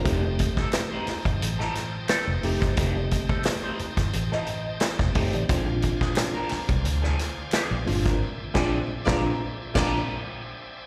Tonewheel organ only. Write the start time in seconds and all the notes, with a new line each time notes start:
0.05 C5 D#5 G5 A5
5.50 D5 F5 G#5
8.22 E5